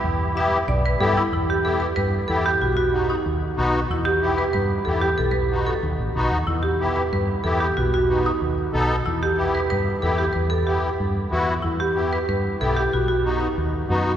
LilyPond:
<<
  \new Staff \with { instrumentName = "Marimba" } { \time 4/4 \key e \minor \tempo 4 = 186 r4 e''4 d''8 b'8 a'8 e'8 | e'8 g'8 a'8 b'8 b'4 a'8 g'8 | fis'8 fis'4 dis'2 r8 | e'8 g'4 b'8 b'4 a'8 g'8 |
a'8 b'4 a'2 r8 | e'8 g'4 b'8 b'4 a'8 g'8 | fis'8 fis'4 dis'2 r8 | e'8 g'4 b'8 b'4 a'16. a'32 g'8 |
b'8 a'8 g'2~ g'8 r8 | e'8 g'4 b'8 b'4 a'8 g'8 | fis'8 fis'4 dis'2 r8 | }
  \new Staff \with { instrumentName = "Accordion" } { \time 4/4 \key e \minor r4 <b e' g'>8 r4. <b e' g'>8 r8 | r4 <b e' g'>8 r4. <b e' g'>8 r8 | r4 <b dis' fis'>8 r4. <b dis' fis'>8 r8 | r4 <b e' g'>8 r4. <b e' g'>8 r8 |
r4 <b dis' fis'>8 r4. <b dis' fis'>8 r8 | r4 <b e' g'>8 r4. <b e' g'>8 r8 | r4 <b dis' fis'>8 r4. <b dis' a'>8 r8 | r4 <b e' g'>8 r4. <b e' g'>8 r8 |
r4 <b e' g'>8 r4. <b e' fis'>8 r8 | r4 <b e' g'>8 r4. <b e' g'>8 r8 | r4 <b dis' fis'>8 r4. <b dis' fis'>8 r8 | }
  \new Staff \with { instrumentName = "Fingered electric bass" } { \clef bass \time 4/4 \key e \minor e,2 b,,4 g,4 | e,2 g,4 e,4 | b,,2 dis,4 b,,4 | e,2 g,4 e,4 |
b,,2 dis,8 a,,8 b,,8 dis,8 | e,2 g,4 e,4 | b,,2 dis,4 b,,4 | e,2 g,4 e,4 |
e,2 g,4 e,4 | e,2 g,4 b,,4 | b,,2 dis,4 fis,4 | }
>>